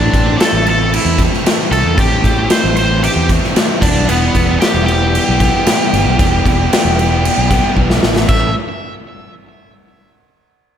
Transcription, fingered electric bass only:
0.14 0.36 A1 medium
0.53 0.96 A1 medium
1.05 1.27 E2 loud
1.71 1.82 C2 loud
1.85 1.96 E2 loud
1.98 2.20 A1 loud
2.24 2.46 A1 medium
2.64 3.07 A1 medium
3.16 3.38 E2 loud
3.82 3.93 E1 loud
3.95 4.06 B1 loud
4.08 4.30 E1 loud
4.35 4.56 E1 loud
4.74 5.18 E1 medium
5.29 5.50 B1 loud
5.93 6.04 G1 loud
6.05 6.16 B1 loud
6.20 6.41 E1 loud
6.46 6.67 E1 loud
6.85 7.28 E1 medium
7.38 7.59 B1 loud
7.78 8.01 B1 medium
8.03 8.26 A1 medium
8.29 8.53 A1 loud

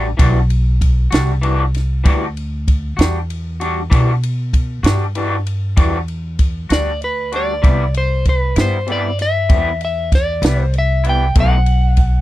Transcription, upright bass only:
0.00 0.16 A1 medium
0.19 1.09 B1 loud
1.12 2.03 C2 loud
2.05 2.96 D2 loud
2.98 3.89 E2 loud
3.91 4.82 B2 loud
4.83 5.74 G2 loud
5.77 6.68 E2 medium
6.70 7.61 D2 medium
7.64 8.54 C2 medium
8.56 9.47 G2 medium
9.49 10.40 E2 medium
10.42 11.32 C2 loud
11.36 12.21 B1 loud

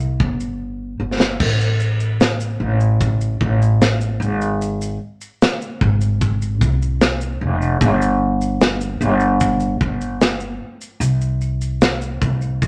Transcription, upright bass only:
0.00 0.17 C2 medium
0.20 0.96 G1 medium
1.00 1.37 G1 medium
1.40 2.57 A1 loud
2.60 3.36 A1 loud
3.41 4.17 A1 medium
4.20 4.96 G#1 loud
5.81 6.61 G#1 loud
6.61 7.37 C2 loud
7.41 7.78 F1 loud
7.81 8.97 G1 loud
9.01 9.77 G1 loud
9.81 10.57 G1 medium
11.00 12.17 C2 loud
12.21 12.68 C2 medium

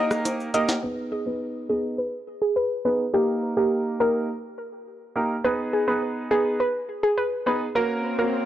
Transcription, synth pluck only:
0.54 0.63 D#5 medium
0.83 0.92 B4 loud
1.12 1.21 G#4 medium
1.26 1.35 B4 medium
1.69 1.78 G#4 medium
1.98 2.07 B4 medium
2.42 2.50 G#4 medium
2.56 2.65 B4 medium
2.85 2.94 B4 medium
3.14 3.22 G4 medium
3.57 3.66 G4 medium
4.00 4.09 A#4 medium
5.45 5.53 B4 medium
5.73 5.82 G#4 medium
5.88 5.97 B4 medium
6.31 6.40 G#4 medium
6.60 6.69 B4 medium
7.03 7.12 G#4 medium
7.18 7.26 B4 medium
7.47 7.55 B4 medium
7.76 7.84 A#4 medium
8.19 8.27 A#4 medium

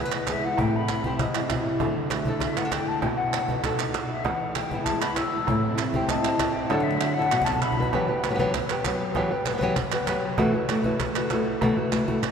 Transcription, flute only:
0.00 0.15 B4 medium
0.13 0.28 D#5 medium
0.30 0.46 E5 medium
0.45 0.61 F#5 medium
0.60 0.78 G5 medium
0.76 1.21 B5 medium
2.43 2.60 E5 medium
2.58 2.74 F#5 medium
2.72 2.89 G5 medium
2.88 3.01 A5 medium
3.01 3.07 G5 medium
3.17 3.60 F#5 medium
4.09 4.26 E5 medium
4.24 4.56 F#5 medium
4.54 4.86 G5 medium
4.84 5.02 A5 medium
5.01 5.17 B5 medium
5.16 5.62 E6 medium
5.94 6.10 G5 medium
6.09 6.54 A5 medium
6.52 6.70 G5 medium
6.69 6.85 F#5 medium
6.83 7.15 E5 medium
7.14 7.46 F#5 loud
7.45 7.63 A5 medium
7.61 7.92 B5 medium

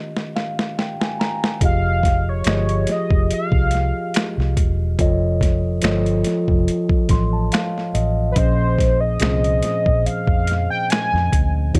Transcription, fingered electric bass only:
1.62 2.42 F1 medium
2.47 2.85 G1 medium
3.11 3.29 F1 medium
3.31 muted fingered electric bass stroke soft
3.52 3.91 C2 medium
4.38 4.55 C2 medium
4.58 4.96 E1 medium
5.00 5.80 F1 medium
5.84 6.22 G1 medium
6.49 6.66 F1 medium
7.10 7.48 A1 medium
7.95 8.33 A1 medium
8.37 9.17 A#1 loud
9.22 9.60 C2 loud
9.87 10.04 A#1 medium
10.06 muted fingered electric bass stroke soft
10.28 10.67 F2 medium
11.13 11.31 F2 medium
11.33 11.71 D2 medium
11.75 11.80 D#2 loud

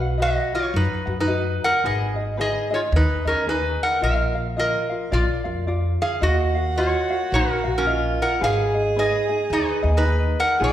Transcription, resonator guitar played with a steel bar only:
0.00 0.16 B4 medium
0.00 0.22 F5 loud
0.22 0.51 F#4 medium
0.22 0.54 D#5 loud
0.55 0.74 F4 medium
0.55 0.76 C#5 medium
0.76 1.16 D#4 medium
0.76 1.19 B4 medium
1.20 1.60 D#4 medium
1.20 1.64 B4 medium
1.64 1.84 A#4 medium
1.64 1.85 F#5 loud
1.86 2.36 G#4 medium
1.86 2.39 D#5 medium
2.41 2.70 G#4 medium
2.41 2.73 D#5 loud
2.74 2.80 F4 medium
2.74 2.79 C#5 medium
2.96 3.25 D#4 medium
2.96 3.27 B4 medium
3.27 3.48 C#4 medium
3.27 3.49 A#4 medium
3.49 3.80 D#4 medium
3.49 3.82 B4 medium
3.83 4.02 A#4 medium
3.83 4.03 F#5 medium
4.04 4.54 A#4 medium
4.04 4.59 F5 medium
4.59 5.10 A#4 medium
4.59 5.15 D#5 medium
5.13 5.64 F4 medium
5.13 5.64 D5 medium
6.02 6.21 G#4 medium
6.02 6.23 F5 medium
6.23 6.74 F#4 medium
6.23 6.77 D#5 medium
6.77 7.28 F4 medium
6.77 7.34 C#5 medium
7.34 7.74 D#4 medium
7.34 7.76 A#4 medium
7.78 8.18 C#4 medium
7.78 8.21 A#4 medium
8.22 8.41 A#4 medium
8.22 8.43 F#5 medium
8.44 8.94 G#4 medium
8.44 8.99 F5 loud
8.99 9.48 G#4 medium
8.99 9.54 D#5 medium
9.53 9.93 D#4 medium
9.53 9.96 B4 loud
9.97 10.37 D#4 medium
9.97 10.41 B4 medium
10.40 10.59 A#4 medium
10.40 10.62 F#5 loud
10.64 10.73 G#4 medium
10.64 10.73 D#5 medium

